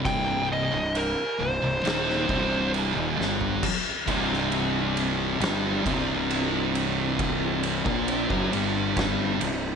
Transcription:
0.00 0.69 C1 loud
0.00 0.71 C2 medium
0.00 0.71 C3 medium
0.05 0.47 G5 loud
0.05 kick loud
0.05 crash medium
0.53 0.97 D#5 medium
0.72 1.14 C1 medium
0.72 1.08 C2 medium
0.95 1.42 A#4 medium
0.95 crash medium
1.40 1.61 C1 medium
1.40 1.61 C2 medium
1.40 2.70 C5 medium
1.63 1.83 C1 medium
1.63 1.84 C2 medium
1.84 2.26 D#1 medium
1.84 2.28 D#2 medium
1.84 2.28 D#3 medium
1.84 snare loud
1.84 crash medium
2.10 snare soft
2.29 2.92 C1 medium
2.29 2.95 C2 loud
2.29 2.95 C3 loud
2.29 kick loud
2.74 crash medium
2.96 3.17 D#1 loud
2.96 3.17 D#2 medium
2.96 3.18 D#3 medium
3.18 3.60 G1 medium
3.18 3.62 G2 medium
3.18 3.62 G3 medium
3.18 snare medium
3.41 floor tom medium
3.63 kick loud
3.63 crash loud
4.07 5.37 C1 medium
4.07 5.40 C2 medium
4.07 5.40 C3 loud
4.07 kick loud
4.07 ride medium
4.33 snare soft
4.52 ride medium
4.97 ride medium
5.40 5.82 G1 loud
5.40 5.84 G2 medium
5.40 5.85 G3 loud
5.40 snare loud
5.40 ride medium
5.85 7.82 C1 medium
5.85 7.84 C2 medium
5.85 7.84 C3 loud
5.85 kick loud
5.85 ride medium
6.30 ride loud
6.75 ride medium
7.19 kick loud
7.19 ride loud
7.63 ride medium
7.85 8.27 A#1 loud
7.85 8.29 A#2 loud
7.85 8.29 A#3 loud
7.85 kick loud
8.08 ride loud
8.29 8.51 F#1 loud
8.29 8.50 F#2 medium
8.29 8.51 F#3 medium
8.29 kick loud
8.51 9.36 G1 loud
8.51 9.39 G2 medium
8.51 9.40 G3 loud
8.51 ride medium
8.97 kick loud
8.97 snare loud
8.97 ride loud
9.40 9.75 C1 medium
9.40 9.75 C2 medium
9.40 ride medium

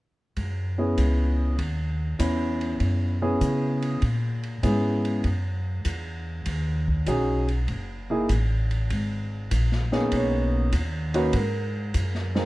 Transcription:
0.37 0.96 F#2 medium
0.37 kick soft
0.37 ride soft
0.78 1.55 B3 soft
0.78 1.55 C#4 soft
0.78 1.55 E4 soft
0.78 1.55 G#4 medium
0.98 1.57 C#2 medium
0.98 kick soft
0.98 hi-hat pedal medium
0.98 ride soft
1.58 2.18 D#2 medium
1.58 kick soft
1.58 ride soft
2.19 2.79 E2 medium
2.19 3.14 B3 soft
2.19 3.14 C#4 soft
2.19 3.14 E4 soft
2.19 3.14 B4 medium
2.19 kick soft
2.19 hi-hat pedal soft
2.19 ride medium
2.61 ride soft
2.80 3.40 F#2 medium
2.80 kick soft
2.80 ride soft
3.22 3.99 B3 medium
3.22 3.98 C#4 medium
3.22 3.99 E4 soft
3.22 3.99 G#4 medium
3.41 4.00 C#3 medium
3.41 kick soft
3.41 hi-hat pedal soft
3.41 ride soft
3.82 ride soft
4.02 4.62 A#2 medium
4.02 kick soft
4.02 ride soft
4.43 ride soft
4.63 5.23 G#2 medium
4.63 5.24 B3 soft
4.63 5.24 C#4 soft
4.63 5.24 E4 soft
4.63 5.25 G#4 medium
4.63 kick soft
4.63 hi-hat pedal soft
4.63 ride soft
5.05 ride soft
5.24 5.84 F#2 medium
5.24 kick soft
5.24 ride soft
5.85 6.45 E2 medium
5.85 kick soft
5.85 hi-hat pedal medium
5.85 ride soft
6.46 7.05 D#2 medium
6.46 kick soft
6.46 ride medium
6.88 kick soft
7.06 7.66 B1 medium
7.06 7.45 C#4 medium
7.06 7.45 D#4 soft
7.06 7.45 F#4 medium
7.06 7.45 G#4 medium
7.06 kick soft
7.06 hi-hat pedal soft
7.06 ride medium
7.48 ride soft
7.68 8.27 F#1 medium
7.68 kick soft
7.68 ride soft
8.10 8.27 A#3 medium
8.10 8.28 D#4 medium
8.10 8.28 E4 medium
8.10 8.28 G#4 medium
8.29 8.88 A1 medium
8.29 kick soft
8.29 hi-hat pedal soft
8.29 ride medium
8.71 ride soft
8.90 9.49 G#1 medium
8.90 kick soft
8.90 ride soft
9.51 10.10 A#1 medium
9.51 kick soft
9.51 hi-hat pedal soft
9.51 ride medium
9.72 snare soft
9.92 10.69 A#3 soft
9.92 10.69 B3 soft
9.92 10.69 C#4 medium
9.92 10.69 D#4 medium
9.92 10.69 G#4 medium
9.92 snare soft
10.12 10.71 B1 medium
10.12 11.12 C#5 medium
10.12 kick soft
10.12 ride medium
10.72 11.32 D#2 medium
10.72 kick soft
10.72 hi-hat pedal soft
10.72 ride medium
11.14 11.32 A#3 medium
11.14 11.32 C#4 medium
11.14 11.32 D#4 medium
11.14 11.32 F#4 medium
11.14 11.34 B4 medium
11.14 ride soft
11.33 11.93 G#2 medium
11.33 12.33 A#4 medium
11.33 kick soft
11.33 ride medium
11.94 12.45 F#2 medium
11.94 kick soft
11.94 hi-hat pedal medium
11.94 ride medium
12.15 snare soft
12.35 12.45 G#3 medium
12.35 12.45 C4 medium
12.35 12.45 D#4 medium
12.35 12.45 A#4 medium
12.35 snare soft

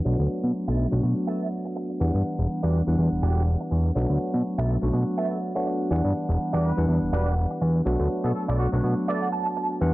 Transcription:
0.05 0.16 B1 medium
0.05 0.89 F#3 medium
0.05 0.89 A3 medium
0.05 0.89 B3 medium
0.05 0.89 D4 medium
0.05 0.89 F#4 medium
0.19 0.28 D2 medium
0.43 0.52 B2 medium
0.54 muted clean electric guitar stroke soft
0.67 0.87 B1 loud
0.67 0.85 A4 medium
0.67 0.85 B4 medium
0.67 0.85 E5 medium
0.91 1.01 B1 medium
0.91 1.97 F#3 medium
0.91 1.98 A3 medium
0.91 1.98 B3 medium
0.91 1.98 D4 medium
0.91 1.98 F#4 medium
1.03 1.14 B2 medium
1.03 muted clean electric guitar stroke soft
1.27 1.46 A4 medium
1.27 1.46 B4 medium
1.27 1.46 E5 loud
1.65 muted clean electric guitar stroke medium
1.76 muted clean electric guitar stroke loud
1.89 muted clean electric guitar stroke soft
2.00 2.11 E2 medium
2.00 2.84 E3 medium
2.00 2.84 G3 medium
2.00 2.84 B3 medium
2.00 2.84 D4 medium
2.00 2.84 F#5 medium
2.14 2.23 G2 medium
2.39 2.47 E1 medium
2.49 muted clean electric guitar stroke soft
2.63 2.82 E2 loud
2.63 2.80 F#4 medium
2.63 2.80 G4 medium
2.63 2.80 D5 loud
2.87 2.96 E2 medium
2.87 3.93 E3 medium
2.87 3.93 G3 medium
2.87 3.93 B3 medium
2.87 3.93 D4 medium
2.87 3.93 F#5 medium
2.98 3.09 E2 medium
2.98 muted clean electric guitar stroke soft
3.12 3.20 E1 soft
3.22 3.56 E1 medium
3.22 3.41 F#4 loud
3.22 3.41 G4 loud
3.22 3.41 A4 loud
3.60 muted clean electric guitar stroke medium
3.71 3.91 E2 medium
3.71 muted clean electric guitar stroke loud
3.85 muted clean electric guitar stroke soft
3.95 4.07 B1 medium
3.95 4.79 F#3 medium
3.95 4.79 A3 medium
3.95 4.79 B3 medium
3.95 4.79 D4 medium
3.95 4.80 F#4 medium
4.09 4.18 D2 medium
4.34 4.42 B2 loud
4.44 muted clean electric guitar stroke soft
4.58 4.77 B1 loud
4.58 4.76 A4 medium
4.58 4.76 B4 medium
4.58 4.76 E5 loud
4.82 4.91 B1 medium
4.82 5.52 F#3 medium
4.82 5.53 A3 medium
4.82 5.53 B3 medium
4.82 5.53 D4 medium
4.82 5.53 F#4 medium
4.93 5.04 B2 medium
4.93 muted clean electric guitar stroke soft
5.17 5.37 A4 loud
5.17 5.37 B4 medium
5.17 5.37 E5 loud
5.55 5.88 F#3 medium
5.55 5.88 A3 medium
5.55 5.88 B3 medium
5.55 5.88 D4 medium
5.55 5.88 F#4 medium
5.55 muted clean electric guitar stroke medium
5.66 muted clean electric guitar stroke loud
5.80 muted clean electric guitar stroke soft
5.90 6.02 E2 medium
5.90 6.74 E3 medium
5.90 6.74 G3 medium
5.90 6.74 B3 medium
5.90 6.74 D4 medium
5.90 6.75 F#5 medium
6.04 6.13 G2 medium
6.29 6.37 E1 medium
6.39 muted clean electric guitar stroke soft
6.53 6.72 E2 loud
6.53 6.71 F#4 medium
6.53 6.71 G4 medium
6.53 6.71 D5 loud
6.64 6.81 B4 medium
6.77 6.86 E2 medium
6.77 7.83 E3 medium
6.77 7.83 G3 medium
6.77 7.83 B3 medium
6.77 7.83 D4 medium
6.77 7.84 F#5 medium
6.88 6.99 E2 medium
6.88 muted clean electric guitar stroke soft
7.02 7.10 E1 soft
7.12 7.46 E1 medium
7.12 7.32 F#4 loud
7.12 7.32 G4 loud
7.12 7.30 B4 medium
7.12 7.32 D5 loud
7.50 muted clean electric guitar stroke medium
7.61 7.81 E2 medium
7.61 muted clean electric guitar stroke loud
7.75 muted clean electric guitar stroke soft
7.85 7.97 B1 loud
7.85 8.69 F#3 medium
7.85 8.69 A3 medium
7.85 8.69 B3 medium
7.85 8.70 D4 medium
7.85 8.70 F#4 medium
7.99 8.08 D2 medium
8.24 8.32 B2 medium
8.24 8.31 A4 medium
8.34 8.43 A4 medium
8.34 muted clean electric guitar stroke soft
8.48 8.67 B1 loud
8.48 8.66 A4 medium
8.48 8.66 B4 medium
8.48 8.66 D5 loud
8.59 8.68 F#4 medium
8.72 8.81 B1 medium
8.72 9.78 F#3 medium
8.72 9.78 A3 medium
8.72 9.78 B3 medium
8.72 9.79 D4 medium
8.72 8.79 F#4 medium
8.72 9.79 F#4 medium
8.83 8.94 B2 medium
8.83 muted clean electric guitar stroke soft
9.07 9.27 A4 loud
9.07 9.27 B4 loud
9.07 9.27 D5 loud
9.07 9.21 E5 medium
9.22 9.32 F#5 medium
9.32 9.78 A5 medium
9.46 muted clean electric guitar stroke medium
9.57 muted clean electric guitar stroke loud
9.70 muted clean electric guitar stroke soft
9.80 9.92 E2 medium
9.80 9.94 E3 medium
9.80 9.94 G3 medium
9.80 9.94 B3 medium
9.80 9.94 D4 medium
9.80 9.94 F#5 medium

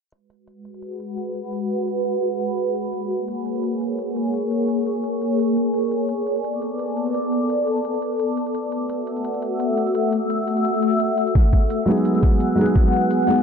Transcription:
0.12 2.73 G#3 medium
0.12 2.73 F#4 medium
0.12 2.73 B4 medium
0.12 closed hi-hat medium
0.30 closed hi-hat medium
0.48 closed hi-hat medium
0.65 closed hi-hat medium
0.74 closed hi-hat soft
0.82 closed hi-hat medium
0.92 closed hi-hat soft
1.00 closed hi-hat medium
1.18 closed hi-hat medium
1.35 closed hi-hat medium
1.44 closed hi-hat soft
1.53 closed hi-hat medium
1.70 closed hi-hat medium
1.88 closed hi-hat medium
2.05 closed hi-hat medium
2.15 closed hi-hat soft
2.23 closed hi-hat medium
2.32 closed hi-hat soft
2.40 closed hi-hat medium
2.58 closed hi-hat medium
2.75 5.71 A#3 medium
2.75 5.71 G#4 medium
2.75 5.71 C#5 medium
2.75 closed hi-hat medium
2.85 closed hi-hat soft
2.93 closed hi-hat medium
3.11 closed hi-hat medium
3.28 closed hi-hat medium
3.46 closed hi-hat medium
3.55 closed hi-hat soft
3.63 closed hi-hat medium
3.73 closed hi-hat soft
3.81 closed hi-hat medium
3.99 closed hi-hat medium
4.16 closed hi-hat medium
4.26 closed hi-hat soft
4.34 closed hi-hat medium
4.51 closed hi-hat medium
4.69 closed hi-hat medium
4.86 closed hi-hat medium
4.96 closed hi-hat soft
5.04 closed hi-hat medium
5.14 closed hi-hat soft
5.22 closed hi-hat medium
5.39 closed hi-hat medium
5.57 closed hi-hat medium
5.66 closed hi-hat soft
5.74 8.52 B3 medium
5.74 8.52 A4 medium
5.74 8.52 D5 medium
5.74 closed hi-hat medium
5.91 closed hi-hat medium
6.09 closed hi-hat medium
6.27 closed hi-hat medium
6.36 closed hi-hat soft
6.44 closed hi-hat medium
6.54 closed hi-hat soft
6.62 closed hi-hat medium
6.79 closed hi-hat medium
6.97 closed hi-hat medium
7.07 closed hi-hat soft
7.15 closed hi-hat medium
7.32 closed hi-hat medium
7.50 closed hi-hat medium
7.67 closed hi-hat medium
7.77 closed hi-hat soft
7.85 closed hi-hat medium
7.94 closed hi-hat soft
8.02 closed hi-hat medium
8.20 closed hi-hat medium
8.37 closed hi-hat medium
8.46 closed hi-hat soft
8.54 11.32 A3 medium
8.54 11.32 F#4 medium
8.54 11.32 E5 medium
8.54 closed hi-hat medium
8.72 closed hi-hat medium
8.90 closed hi-hat medium
9.07 closed hi-hat medium
9.17 closed hi-hat soft
9.25 closed hi-hat medium
9.34 closed hi-hat soft
9.42 closed hi-hat medium
9.60 closed hi-hat medium
9.78 closed hi-hat medium
9.87 closed hi-hat soft
9.95 closed hi-hat medium
10.12 closed hi-hat medium
10.30 closed hi-hat medium
10.47 closed hi-hat medium
10.57 closed hi-hat soft
10.65 closed hi-hat medium
10.74 closed hi-hat soft
10.83 closed hi-hat medium
11.00 closed hi-hat medium
11.18 closed hi-hat medium
11.27 closed hi-hat soft
11.35 13.43 B3 medium
11.35 13.43 G#4 medium
11.35 13.43 F#5 medium
11.35 kick loud
11.35 closed hi-hat medium
11.53 kick medium
11.53 closed hi-hat medium
11.70 closed hi-hat medium
11.86 12.54 F#3 medium
11.86 12.55 G#3 medium
11.86 12.56 B3 medium
11.86 12.57 D#4 medium
11.86 closed hi-hat medium
11.91 12.58 G#4 loud
11.97 closed hi-hat soft
12.05 closed hi-hat medium
12.15 closed hi-hat soft
12.23 kick loud
12.23 closed hi-hat medium
12.40 closed hi-hat medium
12.55 13.25 F#3 medium
12.55 13.26 G#3 medium
12.55 13.26 B3 medium
12.55 closed hi-hat medium
12.60 13.27 D#4 medium
12.60 13.28 G#4 loud
12.68 closed hi-hat soft
12.76 kick loud
12.76 closed hi-hat medium
12.93 closed hi-hat medium
13.11 closed hi-hat medium
13.27 13.43 F#3 medium
13.27 13.43 G#3 medium
13.27 13.43 B3 medium
13.27 13.43 D#4 medium
13.27 13.43 G#4 medium
13.27 closed hi-hat medium
13.38 closed hi-hat soft

